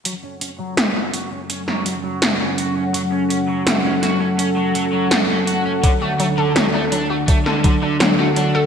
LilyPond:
<<
  \new Staff \with { instrumentName = "Analog synth pad" } { \time 4/4 \key fis \minor \tempo 4 = 83 << { <a' fis''>1~ | <a' fis''>1~ | <a' fis''>1 | } \\ { <fis cis'>1~ | <fis cis'>1 | <d d'>1 | } >> }
  \new Staff \with { instrumentName = "Synth arpeggio sound" } { \time 4/4 \key fis \minor r1 | r1 | fis16 fis'16 fis16 a'16 fis16 d'16 fis16 fis'16 fis16 a'16 fis16 d'16 fis16 fis'16 fis16 a'16 | }
  \new Staff \with { instrumentName = "Overdriven electric guitar" } { \time 4/4 \key fis \minor fis16 cis'16 cis'16 fis16 a16 cis'16 fis'16 cis'16 cis'16 fis16 fis16 fis16 a16 cis'16 fis'16 cis'16 | fis16 cis'16 cis'16 fis16 a16 cis'16 fis'16 cis'16 cis'16 fis16 fis16 fis16 a16 cis'16 fis'16 cis'16 | d16 a16 a16 d16 fis16 a16 d'16 a16 a16 d16 d16 d16 fis16 a16 d'16 a16 | }
  \new DrumStaff \with { instrumentName = "Drums" } \drummode { \time 4/4 hh8 hh8 <hh sn>8 hh8 hh16 sn16 hh8 <hh sn>8 hh8 | hh8 hh8 <hh sn>8 <hh sn>8 hh8 hh8 <hh sn>8 hh8 | <hh bd>8 hh8 <hh sn>8 hh8 <hh bd>16 sn16 <hh bd>8 <hh sn>8 hh8 | }
>>